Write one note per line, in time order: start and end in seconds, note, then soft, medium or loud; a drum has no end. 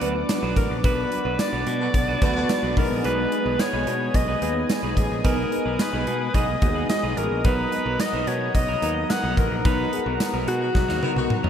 0.00 0.22 D2 medium
0.00 0.84 F#3 loud
0.00 0.84 B3 medium
0.00 11.50 B3 medium
0.00 0.14 B3 medium
0.00 0.02 D4 medium
0.00 0.15 D4 medium
0.00 0.80 D4 medium
0.00 0.14 F#4 medium
0.00 0.02 B4 loud
0.00 0.80 B4 medium
0.00 0.14 B4 medium
0.00 2.73 D5 medium
0.00 2.73 F#5 medium
0.00 2.73 D6 medium
0.00 closed hi-hat medium
0.15 muted clean electric guitar stroke medium
0.29 muted clean electric guitar stroke soft
0.29 snare loud
0.29 closed hi-hat medium
0.29 tambourine medium
0.42 0.53 B1 medium
0.42 0.55 B3 medium
0.42 0.55 D4 medium
0.42 0.56 F#4 medium
0.42 0.56 B4 medium
0.56 0.67 A1 medium
0.56 0.69 A#4 medium
0.56 muted clean electric guitar stroke soft
0.56 kick medium
0.56 closed hi-hat medium
0.70 0.81 A#1 medium
0.70 muted clean electric guitar stroke soft
0.84 1.05 B1 loud
0.84 1.10 F#3 medium
0.84 1.09 B3 medium
0.84 1.10 B3 medium
0.84 1.09 D4 medium
0.84 1.10 D4 medium
0.84 1.10 F#4 medium
0.84 1.11 B4 medium
0.84 1.10 B4 loud
0.84 1.42 B4 loud
0.84 kick loud
0.84 closed hi-hat medium
1.11 2.16 F#3 medium
1.11 2.16 B3 medium
1.11 2.16 D4 medium
1.11 2.17 B4 medium
1.11 muted clean electric guitar stroke soft
1.11 closed hi-hat medium
1.25 1.36 B1 loud
1.25 1.38 B3 soft
1.25 1.38 D4 medium
1.25 1.38 F#4 medium
1.25 1.38 B4 medium
1.39 2.77 D5 loud
1.39 muted clean electric guitar stroke soft
1.39 snare loud
1.39 closed hi-hat medium
1.39 tambourine medium
1.53 1.63 B1 medium
1.53 1.66 B3 medium
1.53 1.66 D4 medium
1.53 1.66 F#4 medium
1.53 1.66 B4 medium
1.67 1.87 B2 medium
1.67 muted clean electric guitar stroke soft
1.67 closed hi-hat medium
1.80 1.92 D3 medium
1.80 1.92 B3 medium
1.80 1.92 F#4 medium
1.80 muted clean electric guitar stroke soft
1.94 2.15 B1 medium
1.94 muted clean electric guitar stroke soft
1.94 kick medium
1.94 closed hi-hat medium
2.08 2.20 B3 medium
2.08 2.21 D4 medium
2.08 2.21 F#4 medium
2.08 2.22 B4 medium
2.21 2.42 D2 medium
2.21 2.31 D3 loud
2.21 2.77 F#3 medium
2.21 2.35 B3 medium
2.21 2.76 B3 medium
2.21 2.31 B3 medium
2.21 2.77 D4 medium
2.21 2.35 D4 medium
2.21 2.31 F#4 loud
2.21 2.35 F#4 medium
2.21 2.76 B4 loud
2.21 2.34 B4 medium
2.21 kick loud
2.21 closed hi-hat medium
2.35 2.75 D3 loud
2.35 2.75 B3 loud
2.35 2.75 F#4 loud
2.35 muted clean electric guitar stroke medium
2.49 muted clean electric guitar stroke soft
2.49 snare loud
2.49 closed hi-hat medium
2.49 tambourine medium
2.63 2.73 B1 medium
2.63 2.76 B3 medium
2.63 2.77 D4 medium
2.63 2.77 F#4 medium
2.63 2.76 B4 medium
2.76 2.87 B1 loud
2.76 3.29 G#3 medium
2.76 3.29 B3 medium
2.76 3.29 D#4 medium
2.76 3.03 A#4 medium
2.76 3.29 B4 medium
2.76 7.41 D#5 medium
2.76 7.41 G#5 medium
2.76 11.50 D#6 loud
2.76 muted clean electric guitar stroke soft
2.76 kick loud
2.76 open hi-hat medium
2.90 3.01 A#1 medium
2.90 muted clean electric guitar stroke soft
3.04 3.25 B1 loud
3.04 3.30 B3 medium
3.04 3.30 D#4 medium
3.04 3.30 G#4 loud
3.04 3.30 B4 loud
3.04 3.62 B4 loud
3.04 closed hi-hat medium
3.31 4.36 G#3 medium
3.31 4.36 B3 medium
3.31 4.37 D#4 medium
3.31 4.37 B4 medium
3.31 muted clean electric guitar stroke soft
3.31 closed hi-hat medium
3.46 3.56 B1 loud
3.46 3.58 B3 soft
3.46 3.59 D#4 medium
3.46 3.59 G#4 medium
3.46 3.59 B4 medium
3.59 4.17 C#5 loud
3.59 muted clean electric guitar stroke soft
3.59 snare loud
3.59 closed hi-hat medium
3.59 tambourine medium
3.73 3.84 B1 medium
3.73 3.86 B3 medium
3.73 3.86 D#4 medium
3.73 3.86 G#4 medium
3.73 3.87 B4 medium
3.87 4.08 B2 loud
3.87 muted clean electric guitar stroke soft
3.87 closed hi-hat medium
4.01 muted clean electric guitar stroke soft
4.14 4.35 B1 medium
4.14 4.70 D#5 loud
4.14 muted clean electric guitar stroke soft
4.14 kick medium
4.14 closed hi-hat medium
4.28 4.41 B3 medium
4.28 4.41 D#4 medium
4.28 4.42 G#4 medium
4.28 4.42 B4 medium
4.41 4.63 D#2 medium
4.41 5.20 G#3 medium
4.41 5.20 B3 medium
4.41 4.55 B3 medium
4.41 5.20 D#4 medium
4.41 4.55 D#4 medium
4.41 4.55 G#4 medium
4.41 5.21 B4 medium
4.41 4.54 B4 medium
4.41 closed hi-hat medium
4.56 muted clean electric guitar stroke soft
4.69 muted clean electric guitar stroke soft
4.69 snare loud
4.69 closed hi-hat medium
4.69 tambourine medium
4.83 4.94 B1 medium
4.83 4.96 B3 medium
4.83 4.96 D#4 medium
4.83 4.96 G#4 medium
4.83 4.97 B4 medium
4.97 5.07 A1 medium
4.97 5.23 G#4 medium
4.97 muted clean electric guitar stroke soft
4.97 kick medium
4.97 closed hi-hat medium
5.11 5.21 A#1 medium
5.11 muted clean electric guitar stroke soft
5.24 5.45 B1 loud
5.24 5.50 G#3 medium
5.24 5.50 B3 medium
5.24 5.51 B3 medium
5.24 5.50 D#4 loud
5.24 5.51 D#4 medium
5.24 5.50 G#4 loud
5.24 5.82 A#4 loud
5.24 5.51 B4 medium
5.24 5.50 B4 medium
5.24 kick loud
5.24 closed hi-hat medium
5.52 6.56 G#3 medium
5.52 6.57 B3 medium
5.52 6.57 D#4 medium
5.52 6.57 B4 medium
5.52 muted clean electric guitar stroke soft
5.52 closed hi-hat medium
5.65 5.76 B1 loud
5.65 5.78 B3 medium
5.65 5.78 D#4 soft
5.65 5.79 G#4 medium
5.65 5.79 B4 medium
5.79 6.36 B4 medium
5.79 muted clean electric guitar stroke soft
5.79 snare loud
5.79 closed hi-hat medium
5.79 tambourine medium
5.93 6.04 B1 loud
5.93 6.06 B3 medium
5.93 6.06 D#4 medium
5.93 6.06 G#4 medium
5.93 6.06 B4 medium
6.07 6.28 B2 loud
6.07 muted clean electric guitar stroke soft
6.07 closed hi-hat medium
6.21 muted clean electric guitar stroke soft
6.34 6.55 B1 loud
6.34 6.51 B3 medium
6.34 6.48 D#4 medium
6.34 6.47 G#4 medium
6.34 6.47 B4 medium
6.34 6.89 D#5 loud
6.34 kick medium
6.34 closed hi-hat medium
6.48 muted clean electric guitar stroke soft
6.62 6.83 D#2 medium
6.62 7.40 G#3 medium
6.62 7.40 B3 medium
6.62 7.41 D#4 medium
6.62 6.69 F#4 medium
6.62 muted clean electric guitar stroke medium
6.62 kick loud
6.62 closed hi-hat medium
6.69 7.44 G#4 medium
6.75 6.88 B3 medium
6.75 6.88 D#4 medium
6.75 6.89 G#4 medium
6.75 6.89 B4 medium
6.89 7.19 D#5 loud
6.89 muted clean electric guitar stroke soft
6.89 snare loud
6.89 closed hi-hat medium
6.89 tambourine medium
7.03 7.14 B1 medium
7.03 7.16 B3 medium
7.03 7.16 D#4 medium
7.03 7.16 G#4 medium
7.03 7.17 B4 medium
7.17 7.28 A1 loud
7.17 7.47 A#4 medium
7.17 muted clean electric guitar stroke soft
7.17 closed hi-hat medium
7.31 7.41 A#1 medium
7.31 muted clean electric guitar stroke medium
7.44 7.65 B1 loud
7.44 7.70 F#3 medium
7.44 7.71 B3 medium
7.44 7.70 B3 medium
7.44 7.71 D#4 medium
7.44 7.70 D#4 loud
7.44 7.70 A#4 loud
7.44 7.71 A#4 medium
7.44 8.02 B4 loud
7.44 11.50 F#5 medium
7.44 11.50 A#5 medium
7.44 kick loud
7.44 closed hi-hat medium
7.72 8.76 F#3 medium
7.72 8.77 B3 medium
7.72 8.77 D#4 medium
7.72 8.77 A#4 medium
7.72 muted clean electric guitar stroke soft
7.72 closed hi-hat medium
7.86 7.96 B1 loud
7.86 7.99 F#3 medium
7.86 7.99 B3 medium
7.86 7.99 D#4 medium
7.86 7.99 A#4 medium
8.00 8.29 D#5 loud
8.00 muted clean electric guitar stroke soft
8.00 snare loud
8.00 closed hi-hat loud
8.00 tambourine medium
8.13 8.24 B1 loud
8.13 8.26 F#3 medium
8.13 8.26 B3 medium
8.13 8.27 D#4 medium
8.13 8.27 A#4 medium
8.27 8.48 B2 loud
8.27 8.55 C#5 medium
8.27 muted clean electric guitar stroke soft
8.27 closed hi-hat medium
8.41 muted clean electric guitar stroke soft
8.55 8.75 B1 medium
8.55 9.12 D#5 loud
8.55 muted clean electric guitar stroke soft
8.55 kick medium
8.55 closed hi-hat medium
8.68 8.81 F#3 medium
8.68 8.82 B3 medium
8.68 8.82 D#4 medium
8.68 8.82 A#4 medium
8.82 9.03 D#2 medium
8.82 9.60 F#3 medium
8.82 8.95 F#3 medium
8.82 9.61 B3 medium
8.82 8.96 B3 medium
8.82 9.61 D#4 medium
8.82 8.96 D#4 medium
8.82 9.61 A#4 medium
8.82 8.95 A#4 medium
8.82 closed hi-hat medium
8.96 muted clean electric guitar stroke soft
9.10 9.37 F#5 loud
9.10 muted clean electric guitar stroke soft
9.10 snare loud
9.10 closed hi-hat medium
9.10 tambourine medium
9.23 9.34 B1 medium
9.23 9.36 F#3 medium
9.23 9.37 B3 medium
9.23 9.37 D#4 medium
9.23 9.37 A#4 loud
9.37 9.48 A1 medium
9.37 9.63 A#4 medium
9.37 muted clean electric guitar stroke soft
9.37 kick medium
9.37 closed hi-hat medium
9.51 9.61 A#1 medium
9.51 muted clean electric guitar stroke soft
9.64 9.86 B1 loud
9.64 9.91 F#3 medium
9.64 9.90 F#3 medium
9.64 9.91 B3 medium
9.64 9.91 D#4 medium
9.64 9.91 D#4 loud
9.64 9.91 A#4 medium
9.64 10.17 B4 loud
9.64 kick loud
9.64 closed hi-hat medium
9.92 10.97 F#3 medium
9.92 10.97 B3 medium
9.92 10.97 D#4 medium
9.92 9.99 G#4 medium
9.92 muted clean electric guitar stroke soft
9.92 closed hi-hat medium
10.00 11.00 A#4 medium
10.06 10.16 B1 loud
10.06 10.19 F#3 soft
10.06 10.19 B3 soft
10.06 10.20 D#4 medium
10.06 10.19 A#4 medium
10.20 muted clean electric guitar stroke soft
10.20 snare loud
10.20 closed hi-hat loud
10.20 tambourine medium
10.34 10.44 B1 loud
10.34 10.46 F#3 medium
10.34 10.47 B3 medium
10.34 10.47 D#4 medium
10.34 10.47 A#4 medium
10.47 10.68 B2 loud
10.47 11.50 F#4 loud
10.47 muted clean electric guitar stroke medium
10.47 closed hi-hat medium
10.61 10.73 D#3 medium
10.61 10.73 B3 medium
10.61 10.73 F#4 medium
10.61 muted clean electric guitar stroke soft
10.75 10.85 B1 medium
10.75 muted clean electric guitar stroke soft
10.75 kick medium
10.75 snare medium
10.88 10.99 D#2 medium
10.88 11.01 F#3 medium
10.88 11.01 B3 medium
10.88 11.02 D#4 medium
10.88 11.02 A#4 medium
10.88 snare medium
11.02 11.11 D#3 loud
11.02 11.50 F#3 medium
11.02 11.15 F#3 medium
11.02 11.50 B3 medium
11.02 11.11 B3 loud
11.02 11.16 B3 medium
11.02 11.50 D#4 medium
11.02 11.15 D#4 medium
11.02 11.11 F#4 loud
11.02 11.15 A#4 medium
11.02 11.50 A#4 medium
11.02 high tom medium
11.16 11.27 B1 medium
11.16 11.50 D#3 loud
11.16 11.50 B3 loud
11.16 11.50 F#4 loud
11.16 muted clean electric guitar stroke medium
11.16 high tom medium
11.30 muted clean electric guitar stroke soft
11.30 mid tom medium
11.43 11.50 F#2 medium
11.43 11.50 F#3 medium
11.43 11.50 B3 medium
11.43 11.50 D#4 medium
11.43 11.50 A#4 medium
11.43 mid tom medium